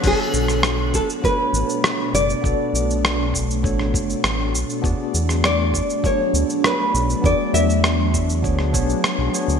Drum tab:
CC |x---------------|----------------|----------------|----------------|
SH |x-xxx-xxx-xxx-xx|x-xxx-xxx-xxx-xx|x-xxx-xxx-xxx-xx|x-xxx-xxx-xxx-xx|
SD |---rr-------r---|----r----r--r---|---rr-------r---|----r----r--r---|
BD |o-----o-o-------|o-----o-o-o-----|o-----o-o-------|o-----o-o-o-----|